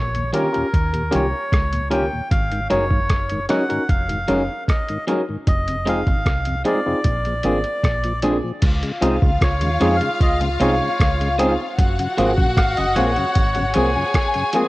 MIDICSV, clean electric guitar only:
0, 0, Header, 1, 3, 480
1, 0, Start_track
1, 0, Tempo, 789474
1, 1406, Time_signature, 4, 2, 24, 8
1, 8926, End_track
2, 0, Start_track
2, 0, Title_t, "Clean electric guitar"
2, 0, Program_c, 0, 27
2, 199, Note_on_c, 0, 51, 89
2, 200, Note_on_c, 0, 58, 92
2, 203, Note_on_c, 0, 61, 83
2, 207, Note_on_c, 0, 67, 100
2, 281, Note_off_c, 0, 51, 0
2, 282, Note_off_c, 0, 58, 0
2, 283, Note_off_c, 0, 61, 0
2, 285, Note_off_c, 0, 67, 0
2, 679, Note_on_c, 0, 51, 81
2, 681, Note_on_c, 0, 58, 81
2, 681, Note_on_c, 0, 61, 83
2, 683, Note_on_c, 0, 67, 98
2, 761, Note_off_c, 0, 51, 0
2, 762, Note_off_c, 0, 58, 0
2, 762, Note_off_c, 0, 61, 0
2, 763, Note_off_c, 0, 67, 0
2, 1161, Note_on_c, 0, 51, 89
2, 1165, Note_on_c, 0, 58, 84
2, 1166, Note_on_c, 0, 61, 83
2, 1168, Note_on_c, 0, 67, 92
2, 1242, Note_off_c, 0, 51, 0
2, 1244, Note_off_c, 0, 58, 0
2, 1244, Note_off_c, 0, 61, 0
2, 1245, Note_off_c, 0, 67, 0
2, 1642, Note_on_c, 0, 54, 75
2, 1643, Note_on_c, 0, 61, 75
2, 1647, Note_on_c, 0, 63, 77
2, 1648, Note_on_c, 0, 68, 86
2, 1723, Note_off_c, 0, 54, 0
2, 1723, Note_off_c, 0, 61, 0
2, 1725, Note_off_c, 0, 63, 0
2, 1726, Note_off_c, 0, 68, 0
2, 2124, Note_on_c, 0, 54, 89
2, 2126, Note_on_c, 0, 61, 96
2, 2128, Note_on_c, 0, 63, 91
2, 2132, Note_on_c, 0, 68, 89
2, 2204, Note_off_c, 0, 54, 0
2, 2205, Note_off_c, 0, 61, 0
2, 2206, Note_off_c, 0, 63, 0
2, 2207, Note_off_c, 0, 68, 0
2, 2602, Note_on_c, 0, 54, 83
2, 2606, Note_on_c, 0, 61, 81
2, 2609, Note_on_c, 0, 63, 91
2, 2610, Note_on_c, 0, 68, 86
2, 2682, Note_off_c, 0, 54, 0
2, 2685, Note_off_c, 0, 61, 0
2, 2686, Note_off_c, 0, 63, 0
2, 2686, Note_off_c, 0, 68, 0
2, 3085, Note_on_c, 0, 54, 88
2, 3087, Note_on_c, 0, 61, 88
2, 3090, Note_on_c, 0, 63, 86
2, 3091, Note_on_c, 0, 68, 94
2, 3164, Note_off_c, 0, 54, 0
2, 3165, Note_off_c, 0, 61, 0
2, 3166, Note_off_c, 0, 63, 0
2, 3167, Note_off_c, 0, 68, 0
2, 3561, Note_on_c, 0, 56, 74
2, 3563, Note_on_c, 0, 60, 75
2, 3565, Note_on_c, 0, 63, 80
2, 3568, Note_on_c, 0, 68, 86
2, 3642, Note_off_c, 0, 56, 0
2, 3643, Note_off_c, 0, 60, 0
2, 3644, Note_off_c, 0, 63, 0
2, 3645, Note_off_c, 0, 68, 0
2, 4041, Note_on_c, 0, 56, 77
2, 4042, Note_on_c, 0, 60, 85
2, 4044, Note_on_c, 0, 63, 94
2, 4048, Note_on_c, 0, 68, 89
2, 4122, Note_off_c, 0, 56, 0
2, 4122, Note_off_c, 0, 60, 0
2, 4124, Note_off_c, 0, 63, 0
2, 4126, Note_off_c, 0, 68, 0
2, 4522, Note_on_c, 0, 53, 82
2, 4526, Note_on_c, 0, 58, 89
2, 4527, Note_on_c, 0, 62, 80
2, 4528, Note_on_c, 0, 68, 86
2, 4602, Note_off_c, 0, 53, 0
2, 4604, Note_off_c, 0, 58, 0
2, 4605, Note_off_c, 0, 62, 0
2, 4605, Note_off_c, 0, 68, 0
2, 5003, Note_on_c, 0, 53, 72
2, 5007, Note_on_c, 0, 58, 88
2, 5008, Note_on_c, 0, 62, 83
2, 5010, Note_on_c, 0, 68, 94
2, 5083, Note_off_c, 0, 53, 0
2, 5085, Note_off_c, 0, 58, 0
2, 5085, Note_off_c, 0, 62, 0
2, 5086, Note_off_c, 0, 68, 0
2, 5483, Note_on_c, 0, 56, 72
2, 5485, Note_on_c, 0, 60, 77
2, 5487, Note_on_c, 0, 65, 80
2, 5490, Note_on_c, 0, 68, 83
2, 5562, Note_off_c, 0, 56, 0
2, 5564, Note_off_c, 0, 60, 0
2, 5564, Note_off_c, 0, 65, 0
2, 5566, Note_off_c, 0, 68, 0
2, 5961, Note_on_c, 0, 56, 84
2, 5963, Note_on_c, 0, 60, 83
2, 5964, Note_on_c, 0, 65, 88
2, 5968, Note_on_c, 0, 68, 104
2, 6041, Note_off_c, 0, 56, 0
2, 6043, Note_off_c, 0, 60, 0
2, 6043, Note_off_c, 0, 65, 0
2, 6045, Note_off_c, 0, 68, 0
2, 6442, Note_on_c, 0, 56, 74
2, 6443, Note_on_c, 0, 60, 80
2, 6447, Note_on_c, 0, 65, 91
2, 6448, Note_on_c, 0, 68, 88
2, 6522, Note_off_c, 0, 56, 0
2, 6522, Note_off_c, 0, 60, 0
2, 6524, Note_off_c, 0, 65, 0
2, 6525, Note_off_c, 0, 68, 0
2, 6921, Note_on_c, 0, 56, 84
2, 6923, Note_on_c, 0, 60, 95
2, 6926, Note_on_c, 0, 65, 105
2, 6927, Note_on_c, 0, 68, 102
2, 7001, Note_off_c, 0, 56, 0
2, 7002, Note_off_c, 0, 60, 0
2, 7004, Note_off_c, 0, 65, 0
2, 7004, Note_off_c, 0, 68, 0
2, 7401, Note_on_c, 0, 53, 84
2, 7403, Note_on_c, 0, 58, 80
2, 7404, Note_on_c, 0, 60, 82
2, 7408, Note_on_c, 0, 68, 78
2, 7481, Note_off_c, 0, 53, 0
2, 7482, Note_off_c, 0, 58, 0
2, 7483, Note_off_c, 0, 60, 0
2, 7485, Note_off_c, 0, 68, 0
2, 7878, Note_on_c, 0, 53, 90
2, 7881, Note_on_c, 0, 58, 89
2, 7884, Note_on_c, 0, 60, 91
2, 7885, Note_on_c, 0, 68, 100
2, 7959, Note_off_c, 0, 53, 0
2, 7961, Note_off_c, 0, 58, 0
2, 7962, Note_off_c, 0, 60, 0
2, 7963, Note_off_c, 0, 68, 0
2, 8361, Note_on_c, 0, 53, 92
2, 8366, Note_on_c, 0, 58, 95
2, 8369, Note_on_c, 0, 60, 85
2, 8371, Note_on_c, 0, 68, 100
2, 8441, Note_off_c, 0, 53, 0
2, 8443, Note_off_c, 0, 58, 0
2, 8445, Note_off_c, 0, 60, 0
2, 8445, Note_off_c, 0, 68, 0
2, 8836, Note_on_c, 0, 53, 89
2, 8839, Note_on_c, 0, 58, 92
2, 8842, Note_on_c, 0, 60, 91
2, 8843, Note_on_c, 0, 68, 95
2, 8918, Note_off_c, 0, 53, 0
2, 8919, Note_off_c, 0, 58, 0
2, 8921, Note_off_c, 0, 60, 0
2, 8922, Note_off_c, 0, 68, 0
2, 8926, End_track
3, 0, Start_track
3, 0, Title_t, "Muted clean electric guitar strokes"
3, 802, Note_on_c, 9, 29, 37
3, 862, Note_off_c, 9, 29, 0
3, 2725, Note_on_c, 9, 29, 42
3, 2785, Note_off_c, 9, 29, 0
3, 4645, Note_on_c, 9, 29, 43
3, 4706, Note_off_c, 9, 29, 0
3, 6088, Note_on_c, 9, 29, 42
3, 6149, Note_off_c, 9, 29, 0
3, 6326, Note_on_c, 9, 29, 44
3, 6387, Note_off_c, 9, 29, 0
3, 7046, Note_on_c, 9, 29, 45
3, 7107, Note_off_c, 9, 29, 0
3, 8007, Note_on_c, 9, 29, 42
3, 8068, Note_off_c, 9, 29, 0
3, 8243, Note_on_c, 9, 29, 42
3, 8304, Note_off_c, 9, 29, 0
3, 8926, End_track
0, 0, End_of_file